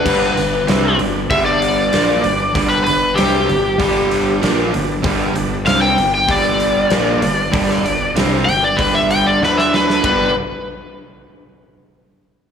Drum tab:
CC |x---------------|----------------|----------------|----------------|
RD |----------------|----------------|----------------|----------------|
HH |--o-o-o-o-o-o-o-|o-o-o-o-o-o-o-o-|o-o-o-o-o-o-o-o-|o-o-o-o-o-o-----|
SD |-o--o-------o---|----o-------o---|----o-------o---|-o--o-------oooo|
BD |o-------o-------|o-------o-------|o-------o-------|o-------o-------|

CC |----------------|
RD |b---------------|
HH |----------------|
SD |----------------|
BD |o---------------|